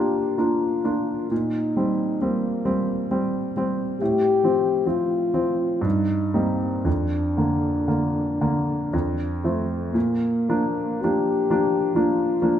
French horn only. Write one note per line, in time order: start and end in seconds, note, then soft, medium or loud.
0.00 0.40 G4 medium
0.38 1.31 F4 soft
1.32 2.23 D#4 medium
2.22 3.11 A#3 medium
4.00 4.89 G4 medium
4.88 5.84 F4 medium
5.85 6.36 D#4 medium
6.35 6.87 C4 soft
6.86 9.44 D4 soft
9.93 11.04 A#3 medium
11.03 11.97 G4 medium
11.96 12.60 F4 medium